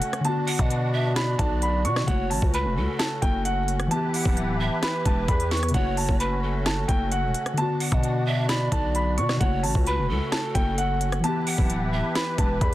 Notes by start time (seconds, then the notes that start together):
Already playing: C#3 A3 C#4 F#4 A4 F#5
0.02 closed hi-hat
0.13 cross-stick, closed hi-hat
0.20 D3
0.24 B3 D4 F#4 A5, closed hi-hat
0.29 F#4
0.47 F#5, closed hi-hat, open hi-hat
0.59 B2, kick, closed hi-hat
0.70 closed hi-hat
0.93 E5
1.16 D5 B5, cross-stick, snare, closed hi-hat
1.39 B1 A5, kick, closed hi-hat
1.62 B5, closed hi-hat
1.85 B2 C#6, closed hi-hat
1.96 cross-stick, snare
2.04 C#3 F#5
2.08 F#1 A3 C#4 C#5, kick, closed hi-hat
2.12 F#4
2.30 A1 A5, open hi-hat
2.42 C#2, kick
2.54 B4 B5, closed hi-hat
2.65 E1
2.76 C#2 A4
2.99 A5, cross-stick, snare, closed hi-hat
3.22 F#1 G5, kick, closed hi-hat
3.45 F#5, closed hi-hat
3.68 closed hi-hat
3.80 cross-stick, closed hi-hat
3.87 E3 A5, closed hi-hat
3.91 E3 B3 E4 G4 B4
3.95 G4
4.14 F#5, open hi-hat
4.25 D1, kick
4.37 closed hi-hat
4.60 E5
4.83 B4 B5, cross-stick, snare, closed hi-hat
5.06 E1 A5, kick, closed hi-hat
5.28 E2 B5, kick, closed hi-hat
5.40 closed hi-hat
5.51 C#6, snare, closed hi-hat
5.57 closed hi-hat
5.63 cross-stick, closed hi-hat
5.69 C#3, closed hi-hat
5.74 F#1 A3 C#4 F#4 C#5 F#5, kick, closed hi-hat
5.78 F#4
5.97 A5, open hi-hat
6.09 F#1, kick
6.20 B4 B5, closed hi-hat
6.43 A4
6.66 A5, cross-stick, snare, closed hi-hat
6.88 F#1 G5, kick, closed hi-hat
7.12 F#5, closed hi-hat
7.23 E1
7.35 closed hi-hat
7.46 cross-stick, closed hi-hat
7.53 D3
7.57 B3 D4 A5, closed hi-hat
7.62 F#4
7.80 F#5, closed hi-hat, open hi-hat
7.92 B2, kick, closed hi-hat
8.03 closed hi-hat
8.26 E5
8.49 D5 B5, cross-stick, snare, closed hi-hat
8.72 B1 A5, kick, closed hi-hat
8.95 B5, closed hi-hat
9.18 B2 C#6, closed hi-hat
9.29 cross-stick, snare
9.36 C#3 F#5
9.41 F#1 A3 C#4 C#5, kick, closed hi-hat
9.45 F#4
9.63 A1 A5, open hi-hat
9.75 C#2, kick
9.86 B4 B5, closed hi-hat
9.98 E1
10.09 C#2 A4
10.32 A5, cross-stick, snare, closed hi-hat
10.55 F#1 G5, kick, closed hi-hat
10.78 F#5, closed hi-hat
11.01 closed hi-hat
11.12 cross-stick, closed hi-hat
11.20 E3 E4 G4 B4 A5, closed hi-hat
11.24 B3
11.28 G4
11.47 F#5, open hi-hat
11.58 D1, kick
11.70 closed hi-hat
11.93 E5
12.15 B4 B5, cross-stick, snare, closed hi-hat
12.38 E1 A5, kick, closed hi-hat
12.61 E2 B5, kick, closed hi-hat